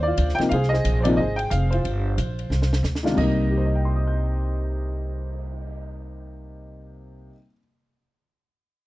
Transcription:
Already playing: D#2 C5
0.03 D5
0.07 F4
0.17 D2, kick, hi-hat pedal, ride
0.29 snare
0.35 C3 G5, muted upright bass stroke, ride
0.39 F3 A#3 D#4, snare
0.49 C2 F5, kick, ride
0.54 G#4 C5
0.63 snare
0.69 D#5
0.73 G#4 C5, snare
0.84 A#1, kick, hi-hat pedal, ride
1.01 C5 D5
1.05 C3 F3 A#3 D#4, ride
1.17 G#1 G#4 C5 D#5, kick
1.36 G5, ride
1.50 F1 F5, kick, hi-hat pedal, ride
1.70 F4 C5, ride
1.85 G1, kick, ride
2.18 A#1, kick, hi-hat pedal, ride
2.39 ride
2.50 C2, snare
2.62 snare
2.73 snare
2.83 D2, snare, hi-hat pedal
2.95 snare
3.03 D#3 G#3 D4 F4, snare
3.10 C3 G3
3.17 C2 A#3 D#5, kick, crash
3.22 D#4
3.38 cymbal swell
3.50 G4
3.58 C5
3.66 D#5
3.75 G5
3.85 C6
3.96 D#6
4.07 G6

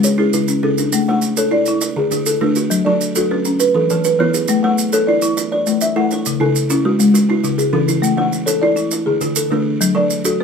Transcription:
Already playing: G#3 F#4
0.04 G#4 C#5, maracas
0.18 C#4 E4 G#4
0.33 C#3 E4 B4, maracas
0.48 C#4, maracas
0.63 C#3 C#4 G#4 A4
0.78 D4, maracas
0.93 A3, maracas
1.08 A3 C#5 F#5
1.22 maracas
1.37 A4 C#5, maracas
1.51 E4 D5
1.66 E4, maracas
1.81 D5, maracas
1.96 D3 G#4
2.11 D3 G#4, maracas
2.26 A4, maracas
2.41 D3 A3 D4 B4
2.56 F#4, maracas
2.70 F#3, maracas
2.85 F#3 A4 D5
3.01 maracas
3.15 F#4 A4, maracas
3.31 C#4 B4
3.45 C#4, maracas
3.60 B4, maracas
3.74 E3 A4
3.90 E3 A4, maracas
4.04 B4, maracas
4.19 E3 B3 E4 C#5
4.34 G#4, maracas
4.48 A3, maracas
4.63 A3 C#5 F#5
4.78 maracas
4.93 A4 C#5, maracas
5.07 E4 D5
5.22 E4, maracas
5.37 D5, maracas
5.52 C#5 D5
5.66 A3 D5, maracas
5.81 E5, maracas
5.96 A3 E4 A4 F#5
6.11 C#5, maracas
6.25 C#3, maracas
6.40 C#3 E4 A4
6.55 maracas
6.70 C#4 E4, maracas
6.85 G#3 F#4
7.00 G#3, maracas
7.14 F#4, maracas
7.29 E4 F#4
7.44 C#3 F#4, maracas
7.58 G#4, maracas
7.73 C#3 E3 C#4 A4
7.88 E4, maracas
8.02 A3, maracas
8.17 A3 C#5 F#5
8.33 maracas
8.46 A4 C#5, maracas
8.62 E4 D5
8.76 E4, maracas
8.91 D5, maracas
9.06 D3 G#4
9.21 D3 G#4, maracas
9.36 A4, maracas
9.51 D3 A3 D4 B4
9.81 F#3, maracas
9.95 F#3 A4 D5
10.10 maracas
10.25 F#4 A4, maracas
10.40 C#4 B4

